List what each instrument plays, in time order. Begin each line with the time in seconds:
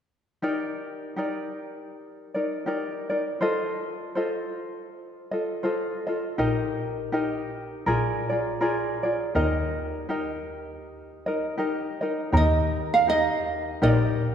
0.42 ukulele D#4 G4 A#4 D5
1.16 ukulele D#4 G4 A#4 D5
2.34 ukulele D#4 A#4 D5
2.66 ukulele D#4 G4 A#4 D5
3.10 ukulele D#4 A#4 D5
3.41 ukulele F4 A4 C5 D#5
4.15 ukulele F4 A4 C5 D#5
5.31 ukulele F4 A4 D#5
5.63 ukulele F4 A4 C5 D#5
6.07 ukulele F4 A4 D#5
6.38 double bass A#1, ukulele D#4 G4 A#4 D#5
7.12 ukulele D#4 G4 A#4 D#5
7.86 double bass A#1, ukulele F4 G#4 A#4 D5
8.29 ukulele F4 G#4 D5
8.61 ukulele F4 G#4 A#4 D5
9.03 ukulele F4 G#4 D5
9.35 double bass D#2, ukulele D#4 G4 A#4 D#5
10.09 ukulele D#4 G4 A#4 D#5
11.26 ukulele D#4 A#4 D#5
11.58 ukulele D#4 G4 A#4 D#5
12.01 ukulele D#4 A#4 D#5
12.32 double bass D#2, ukulele D#4 G4 A#4
12.37 ukulele D#5
12.94 ukulele F5
13.07 ukulele D#4 G4 A#4 D#5
13.82 double bass A#1, ukulele D#4 G4 A#4 D5